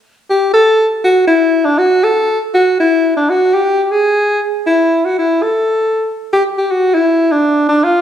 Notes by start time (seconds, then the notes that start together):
0.30 G4
0.54 A4
1.04 F#4
1.28 E4
1.65 D4
1.78 F#4
2.04 A4
2.54 F#4
2.80 E4
3.17 D4
3.30 F#4
3.54 G4
3.84 G4
3.91 G#4
4.67 E4
5.05 F#4
5.19 E4
5.43 A4
6.33 G4
6.58 G4
6.71 F#4
6.94 E4
7.32 D4
7.69 D4
7.84 F4